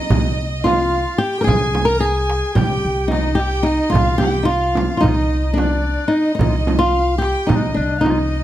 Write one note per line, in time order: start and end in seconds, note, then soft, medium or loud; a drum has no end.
0.00 0.38 D#4 medium
0.00 0.64 D#4 medium
0.00 0.65 D#5 medium
0.10 1.04 C2 medium
0.10 darbuka dum medium
0.10 frame drum medium
0.38 darbuka ka soft
0.63 1.21 F4 medium
0.63 1.16 F4 medium
0.63 1.19 F5 medium
0.63 darbuka tek medium
0.63 frame drum medium
1.18 1.40 G4 loud
1.18 1.45 G4 medium
1.18 1.46 G5 medium
1.41 1.85 G#4 medium
1.41 1.44 A#4 medium
1.46 2.41 C2 medium
1.46 1.88 G#4 medium
1.46 1.88 G#5 medium
1.46 frame drum medium
1.46 darbuka dum medium
1.75 darbuka tek medium
1.75 frame drum medium
1.85 1.99 A#4 loud
1.85 2.02 A#4 medium
1.85 2.01 A#5 medium
2.00 2.58 G#4 medium
2.00 2.55 G#4 loud
2.00 2.57 G#5 medium
2.30 darbuka tek medium
2.55 2.80 C2 medium
2.55 3.12 G4 medium
2.55 3.10 G4 medium
2.55 3.07 G5 medium
2.55 frame drum medium
2.55 darbuka dum medium
2.85 3.78 C2 medium
2.85 darbuka ka soft
3.08 3.38 D#4 medium
3.08 3.41 D#4 medium
3.08 3.39 D#5 medium
3.08 frame drum medium
3.12 darbuka tek medium
3.35 3.65 G4 medium
3.35 3.66 G5 medium
3.40 3.66 G4 medium
3.63 3.90 D#4 medium
3.63 3.94 D#4 medium
3.63 3.93 D#5 medium
3.90 4.87 C2 medium
3.90 4.18 F4 medium
3.90 4.22 F4 medium
3.90 4.21 F5 medium
3.90 frame drum medium
3.95 darbuka dum loud
4.18 4.38 G4 medium
4.18 4.48 G4 medium
4.18 4.48 G5 medium
4.18 frame drum medium
4.23 darbuka tek medium
4.43 4.49 D#4 medium
4.43 4.96 F4 loud
4.43 5.03 F4 medium
4.48 4.99 F5 medium
4.64 darbuka ka soft
4.75 darbuka tek medium
4.75 frame drum medium
4.97 5.53 D#4 medium
4.97 5.04 F4 medium
5.02 5.96 C2 medium
5.02 5.09 D#4 medium
5.02 5.57 D#5 medium
5.02 frame drum medium
5.02 darbuka dum medium
5.08 5.16 F4 medium
5.15 5.43 D#4 medium
5.32 darbuka ka soft
5.45 5.60 D#4 medium
5.54 6.07 D4 medium
5.54 6.12 D5 medium
5.58 6.15 D4 medium
5.58 darbuka tek medium
5.58 frame drum medium
6.08 6.34 D#4 medium
6.12 6.40 D#4 medium
6.12 6.37 D#5 medium
6.35 6.80 D#4 medium
6.35 6.77 D#5 medium
6.39 7.33 C2 medium
6.39 6.49 D#4 medium
6.39 frame drum medium
6.39 darbuka dum loud
6.47 6.58 F4 medium
6.56 6.82 D#4 medium
6.67 darbuka tek medium
6.67 frame drum medium
6.78 7.18 F4 medium
6.78 7.20 F5 medium
7.18 7.48 G4 medium
7.18 7.49 G5 medium
7.18 darbuka tek medium
7.24 7.52 G4 medium
7.47 7.73 C2 medium
7.47 7.73 D#4 medium
7.47 7.57 D#4 medium
7.47 7.96 D#5 medium
7.47 frame drum medium
7.47 darbuka dum medium
7.56 7.63 D4 medium
7.62 7.78 D#4 medium
7.74 8.44 C2 medium
7.74 8.00 D4 medium
7.74 8.05 D4 medium
7.74 darbuka ka soft
7.97 8.04 F5 medium
8.01 8.44 D#4 medium
8.01 8.12 D#4 medium
8.01 8.44 D#5 medium
8.01 frame drum medium
8.06 8.21 F4 medium
8.06 darbuka tek medium
8.19 8.44 D#4 medium